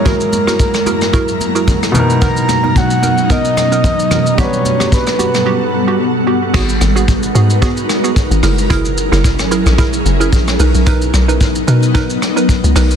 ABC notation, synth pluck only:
X:1
M:4/4
L:1/16
Q:"Swing 16ths" 1/4=111
K:B
V:1 name="Synth pluck"
[EFGA]3 [EFGA] z2 [EFGA] z [EFGA] z2 [EFGA] z2 [B,DA] z | [B,DA]3 [B,DA] z2 [B,DA] z [B,DA] z2 [B,DA] z2 [B,DA] z | [B,F=G]3 [B,FG] z2 [B,FG] z [B,FG] z2 [B,FG] z2 [B,FG] z | [B,FG]3 [B,FG] z2 [B,FG] z [B,FG] z2 [B,FG] z2 [EGA] z |
[EGA]3 [EGA] z2 [EGA] z [EGA] z2 [EGA] z2 [DAB] z | [DAB]3 [DAB] z2 [DAB] z [DAB] z2 [DAB] z2 [DAB] z |]